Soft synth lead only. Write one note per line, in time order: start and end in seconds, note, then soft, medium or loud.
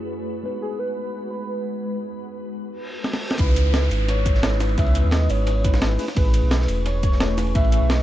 0.62 0.81 G#4 loud
0.79 1.30 B4 loud
1.30 1.96 B4 loud
3.39 3.88 B4 loud
4.09 4.57 C#5 loud
4.78 5.14 E5 loud
5.13 5.32 D#5 loud
5.30 5.82 C#5 medium
6.17 6.65 B4 loud
6.86 7.34 C#5 loud
7.56 7.92 E5 loud
7.90 8.03 D#5 loud